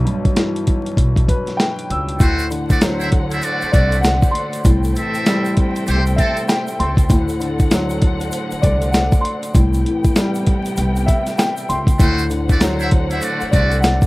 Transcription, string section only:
2.20 4.62 D3 medium
2.20 11.96 A3 medium
2.20 4.62 C5 medium
2.20 4.62 F#5 medium
4.66 7.08 C3 medium
4.66 7.08 C5 medium
4.66 7.08 G5 medium
7.09 9.52 D3 medium
7.09 9.52 C5 medium
7.09 9.52 F#5 medium
9.53 11.96 C3 medium
9.53 11.96 B3 medium
9.53 11.96 G5 loud
11.99 14.06 D3 medium
11.99 14.06 A3 medium
11.99 14.06 C5 medium
11.99 14.06 F#5 medium

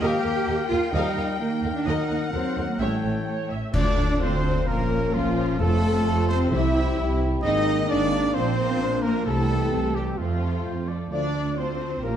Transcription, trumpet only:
0.01 0.17 D#5 medium
0.94 1.10 D#5 medium
1.86 2.02 D#5 medium
2.79 2.96 E5 medium
3.75 4.18 D5 loud
4.21 4.69 C5 loud
4.67 5.15 A#4 loud
5.14 5.59 F4 loud
5.60 6.28 A4 loud
6.29 6.39 C5 loud
6.52 7.19 E5 loud
7.43 7.86 D#5 loud
7.89 8.36 D5 loud
8.35 9.04 C5 loud
9.03 9.25 A#4 loud
9.26 9.97 A4 loud
9.95 10.20 G4 loud
10.18 10.89 F4 medium
11.11 11.59 D5 medium
11.58 12.04 C5 medium
12.04 12.16 A#4 medium

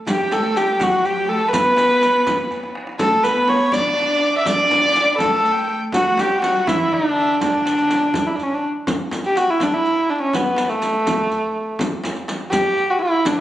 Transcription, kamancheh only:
0.09 0.34 G4 medium
0.33 0.59 A4 medium
0.57 0.84 G4 medium
0.83 1.07 F#4 medium
1.05 1.30 G4 medium
1.29 1.51 A4 medium
1.51 2.71 B4 loud
3.00 3.25 A4 loud
3.24 3.50 B4 loud
3.49 3.74 C#5 loud
3.72 4.37 D5 loud
4.38 4.48 E5 medium
4.47 5.18 D5 loud
5.18 5.71 A4 loud
5.94 6.21 F#4 medium
6.20 6.41 G4 medium
6.42 6.68 F#4 medium
6.67 6.95 E4 medium
6.94 7.42 D4 loud
7.44 8.28 D4 medium
8.26 8.37 E4 medium
8.36 8.44 D4 medium
8.43 8.55 C#4 medium
8.54 8.63 D4 medium
9.26 9.39 G4 medium
9.37 9.51 F#4 medium
9.50 9.64 E4 medium
9.63 9.75 D4 medium
9.73 10.11 E4 medium
10.10 10.21 D4 medium
10.22 10.36 C#4 medium
10.35 10.72 B3 medium
10.70 11.78 A3 medium
12.51 12.91 G4 loud
12.90 13.01 F#4 medium
13.02 13.28 E4 medium
13.27 13.40 D4 medium

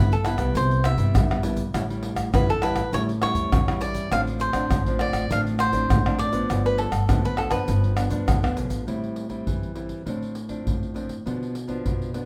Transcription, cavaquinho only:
0.00 0.12 B4 medium
0.13 0.27 A4 medium
0.26 0.53 B4 medium
0.57 0.87 C5 medium
0.85 1.41 E5 medium
2.35 2.49 B4 medium
2.50 2.63 A4 medium
2.63 2.91 B4 medium
2.94 3.02 C#5 medium
3.23 3.84 C#5 loud
3.81 4.12 D5 medium
4.12 4.20 F5 loud
4.41 5.02 C5 medium
5.01 5.32 D5 medium
5.32 5.40 F5 loud
5.60 6.19 C5 medium
6.19 6.65 D5 medium
6.66 6.79 B4 medium
6.79 7.25 A4 medium
7.25 7.40 B4 medium
7.38 7.51 A4 medium
7.51 8.38 B4 medium

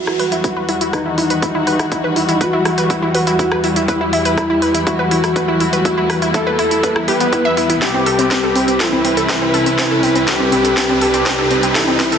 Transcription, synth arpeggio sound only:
0.07 0.13 E4 medium
0.19 0.25 B4 medium
0.32 0.38 E4 medium
0.44 0.50 E4 medium
0.57 0.62 B4 medium
0.69 0.75 E4 medium
0.81 0.87 E4 medium
0.93 0.99 B4 medium
1.06 1.12 E4 medium
1.18 1.24 E4 medium
1.30 1.36 B4 medium
1.42 1.48 E4 medium
1.55 1.61 E4 medium
1.67 1.73 B4 medium
1.79 1.85 E4 medium
1.92 1.98 E4 medium
2.04 2.10 B4 medium
2.16 2.22 E4 medium
2.29 2.34 E4 medium
2.41 2.47 B4 medium
2.53 2.59 E4 medium
2.65 2.71 E4 medium
2.78 2.84 B4 medium
2.90 2.96 E4 medium
3.02 3.08 E4 medium
3.15 3.21 B4 medium
3.27 3.33 E4 medium
3.39 3.45 E4 medium
3.52 3.57 B4 medium
3.64 3.70 E4 medium
3.76 3.82 E4 medium
3.88 3.94 B4 medium
4.01 4.07 E4 medium
4.13 4.19 E4 medium
4.25 4.31 B4 medium
4.37 4.43 E4 medium
4.50 4.56 E4 medium
4.62 4.68 B4 medium
4.75 4.80 E4 medium
4.87 4.93 E4 medium
4.99 5.05 B4 medium
5.11 5.17 E4 medium
5.24 5.30 E4 medium
5.36 5.42 B4 medium
5.48 5.54 E4 medium
5.61 5.66 E4 medium
5.73 5.79 B4 medium
5.85 5.91 E4 medium
5.98 6.03 E4 medium
6.10 6.16 B4 medium
6.22 6.28 E4 medium
6.34 6.40 E4 medium
6.47 6.52 B4 medium
6.59 6.65 E4 medium
6.71 6.77 E4 medium
6.83 6.89 B4 medium
6.96 7.02 E4 medium
7.08 7.12 G4 loud
7.20 7.24 B3 medium
7.33 7.41 E4 medium
7.45 7.51 E5 loud
7.57 7.61 E4 medium
7.70 7.75 E4 medium
7.82 7.88 C4 medium
7.94 8.00 C4 medium
8.06 8.12 A4 medium
8.19 8.25 C4 medium
8.31 8.37 C4 medium
8.43 8.49 A4 medium
8.56 8.61 C4 medium
8.68 8.74 C4 medium
8.80 8.86 A4 medium
8.93 8.98 C4 medium
9.05 9.11 C4 medium
9.17 9.23 A4 medium
9.29 9.35 C4 medium
9.42 9.48 C4 medium
9.54 9.60 A4 medium
9.66 9.72 C4 medium
9.79 9.84 C4 medium
9.91 9.97 A4 medium
10.03 10.09 C4 medium
10.16 10.21 C4 medium
10.28 10.34 A4 medium
10.40 10.46 C4 medium
10.52 10.58 C4 medium
10.65 10.71 A4 medium
10.77 10.83 C4 medium
10.89 10.95 C4 medium
11.02 11.07 A4 medium
11.14 11.20 C4 medium
11.26 11.32 C4 medium
11.39 11.44 A4 medium
11.51 11.57 C4 medium
11.63 11.69 C4 medium
11.75 11.81 A4 medium
11.88 11.93 C4 medium
12.00 12.06 C4 medium
12.12 12.18 A4 medium

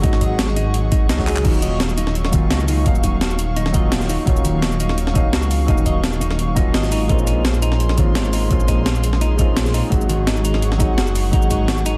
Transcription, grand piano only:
0.00 0.02 F#3 medium
0.00 0.89 F#3 medium
0.00 0.03 G#3 medium
0.00 0.89 G#3 medium
0.00 0.04 C#4 medium
0.00 0.90 C#4 medium
0.00 0.04 D#4 medium
0.00 0.05 F#4 medium
0.04 0.90 D#4 medium
0.04 0.91 F#4 medium
1.18 1.25 F#3 medium
1.18 1.25 G#3 medium
1.18 1.25 C#4 medium
1.18 1.25 D#4 medium
1.18 1.26 F#4 medium
1.26 1.41 F#3 loud
1.26 1.43 G#3 medium
1.26 1.43 C#4 medium
1.26 1.43 D#4 medium
1.26 1.43 G#4 loud
1.43 2.30 F#3 medium
1.43 2.31 A#3 medium
1.43 2.31 C#4 medium
1.43 2.31 D#4 medium
1.43 2.32 F4 medium
2.31 2.83 F#3 medium
2.31 2.83 A#3 medium
2.31 2.84 C#4 medium
2.31 2.84 D#4 medium
2.31 2.85 F4 medium
2.84 3.71 F#3 medium
2.84 3.72 A#3 medium
2.84 3.72 C#4 medium
2.84 3.73 D#4 medium
2.84 3.73 F5 medium
3.72 4.24 F#3 medium
3.72 4.25 A#3 medium
3.72 4.25 C#4 medium
3.72 4.26 D#4 medium
3.72 4.26 F4 medium
4.25 5.12 F#3 medium
4.25 5.13 A#3 medium
4.25 5.13 C#4 medium
4.25 5.14 D#4 medium
4.25 5.14 F4 medium
5.14 5.65 F#3 medium
5.14 5.66 A#3 medium
5.14 5.66 C#4 medium
5.14 5.67 D#4 medium
5.14 5.67 F5 medium
5.67 6.53 F#3 medium
5.67 6.54 A#3 medium
5.67 6.55 C#4 medium
5.67 6.55 D#4 medium
5.67 6.55 F5 medium
6.55 7.07 F#3 medium
6.55 7.07 A#3 medium
6.55 7.07 C#4 medium
6.55 7.08 D#4 medium
6.55 7.08 F4 medium
7.08 7.94 G#3 medium
7.08 7.95 A#3 medium
7.08 7.96 C4 medium
7.08 7.96 C#4 medium
7.08 7.97 F4 medium
7.96 8.47 G#3 medium
7.96 8.48 A#3 medium
7.96 8.49 C4 medium
7.96 8.49 C#4 medium
7.96 8.50 F4 medium
8.49 9.36 G#3 medium
8.49 9.36 A#3 medium
8.49 9.37 C4 medium
8.49 9.37 C#4 medium
8.49 9.38 F4 medium
9.37 9.89 G#3 medium
9.37 9.89 A#3 medium
9.37 9.90 C4 medium
9.37 9.90 C#4 medium
9.37 9.91 F4 medium
9.90 10.77 F#3 medium
9.90 10.77 G#3 medium
9.90 10.78 C#4 medium
9.90 10.79 D#4 medium
9.90 10.79 F#4 medium
10.78 11.30 F#3 medium
10.78 11.30 G#3 medium
10.78 11.31 C#4 medium
10.78 11.31 D#4 medium
10.78 11.32 F#4 medium
11.31 11.97 F#3 medium
11.31 11.97 G#3 medium
11.31 11.97 C#4 medium
11.31 11.97 D#4 medium
11.31 11.97 F#4 medium

